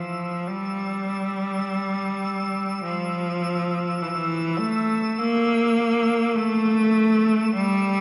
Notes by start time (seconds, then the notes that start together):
Already playing: F3 E6
0.47 G3
2.83 F3
4.02 E3
4.07 F3
4.15 E3
4.59 A3
5.18 A#3
6.36 A3
7.54 G3